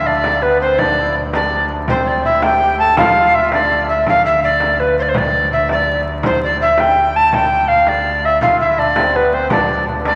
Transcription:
0.00 4.05 D2 soft
0.06 0.44 D4 medium
0.06 0.44 D5 medium
0.06 frame drum soft
0.24 frame drum medium
0.42 0.62 B3 medium
0.42 0.60 B4 medium
0.61 0.80 C4 medium
0.61 0.80 C5 medium
0.78 0.98 D4 medium
0.78 1.15 D5 medium
0.78 frame drum medium
0.99 1.15 E4 medium
1.15 frame drum soft
1.33 1.72 D4 medium
1.33 1.65 D5 medium
1.33 frame drum medium
1.52 frame drum soft
1.88 2.26 C4 medium
1.88 2.09 C5 medium
1.88 frame drum medium
2.07 2.24 D5 medium
2.24 2.43 E4 medium
2.24 2.44 E5 medium
2.42 2.61 G4 medium
2.42 2.78 G5 medium
2.42 frame drum medium
2.61 2.80 G4 medium
2.61 frame drum soft
2.79 2.98 A4 medium
2.79 2.96 A5 medium
2.97 3.15 F4 medium
2.97 3.36 F5 medium
2.97 frame drum medium
3.16 3.27 F4 medium
3.16 frame drum soft
3.29 3.40 F4 medium
3.34 3.52 E5 medium
3.34 frame drum soft
3.41 3.52 F4 medium
3.52 3.90 D4 medium
3.52 3.86 D5 medium
3.52 frame drum medium
3.70 frame drum soft
3.88 4.05 E5 medium
4.06 8.41 D2 medium
4.06 4.24 F5 medium
4.06 frame drum medium
4.25 4.42 E5 medium
4.43 4.81 D5 medium
4.43 frame drum soft
4.60 frame drum medium
4.79 4.97 B4 medium
4.79 frame drum soft
4.99 5.03 C5 medium
4.99 5.10 D5 medium
5.08 5.19 C5 medium
5.14 5.51 D5 medium
5.14 frame drum medium
5.51 5.69 E5 medium
5.51 frame drum soft
5.69 6.01 D5 medium
5.69 frame drum medium
5.87 frame drum soft
6.23 6.42 C5 medium
6.23 frame drum medium
6.43 6.60 D5 medium
6.60 6.81 E5 medium
6.60 frame drum soft
6.78 7.17 G5 loud
6.78 frame drum medium
6.96 frame drum soft
7.16 7.35 A5 loud
7.32 7.69 G5 loud
7.32 frame drum medium
7.68 7.90 F5 medium
7.87 8.26 D5 medium
7.87 frame drum medium
8.25 8.41 E5 medium
8.41 10.15 D2 medium
8.41 8.61 F4 medium
8.41 8.58 F5 medium
8.41 frame drum medium
8.60 8.79 E4 medium
8.60 8.69 E5 medium
8.69 8.80 E5 medium
8.78 8.95 D4 medium
8.78 9.17 D5 medium
8.78 frame drum soft
8.96 9.15 C4 medium
8.96 frame drum medium
9.14 9.33 B3 medium
9.14 9.35 B4 medium
9.14 frame drum soft
9.33 9.52 C4 medium
9.33 9.50 C5 medium
9.50 9.85 D4 medium
9.50 9.85 D5 medium
9.50 frame drum medium
9.87 frame drum soft
10.05 10.15 D4 medium
10.05 10.15 D5 medium
10.05 frame drum medium

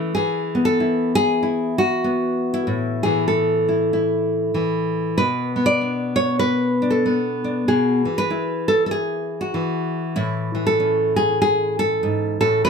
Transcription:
0.00 0.16 E3 medium
0.00 0.16 A3 soft
0.00 0.16 C#4 soft
0.15 3.04 E3 medium
0.15 0.65 G#4 medium
0.55 2.04 B3 medium
0.65 1.15 A4 medium
0.80 1.42 E4 soft
1.15 1.78 G#4 loud
1.43 2.52 E4 soft
1.78 2.66 F#4 loud
2.04 2.70 B3 medium
2.54 3.67 E4 medium
2.67 5.14 A2 medium
3.03 4.53 E3 medium
3.03 3.27 G#4 medium
3.28 5.16 A4 medium
3.69 3.92 E4 soft
3.93 5.15 E4 soft
4.54 5.17 E3 medium
5.18 7.67 B2 medium
5.18 5.65 B4 medium
5.56 7.05 B3 medium
5.66 6.15 D5 medium
5.81 6.81 D4 soft
6.16 6.39 C#5 loud
6.39 7.53 B4 medium
6.82 7.43 D4 soft
6.90 7.66 A4 medium
7.06 8.05 B3 medium
7.44 7.65 D4 soft
7.68 8.05 B2 medium
7.68 8.68 G#4 medium
8.05 9.53 E3 medium
8.18 9.30 B4 medium
8.30 10.14 E4 soft
8.68 8.85 A4 loud
8.86 8.91 A4 medium
8.91 10.04 G#4 medium
9.41 10.16 F#4 medium
9.54 10.53 E3 medium
10.16 12.03 A2 medium
10.16 11.28 E4 medium
10.55 12.65 E3 medium
10.67 11.16 A4 medium
10.80 12.63 C#4 soft
11.16 11.40 G#4 medium
11.42 11.79 G#4 loud
11.79 12.39 A4 loud
12.03 12.40 G#2 medium
12.40 12.65 A2 medium
12.40 12.64 A4 loud
12.65 12.70 B2 medium
12.65 12.70 F#3 soft
12.65 12.70 A3 soft
12.65 12.70 B4 loud

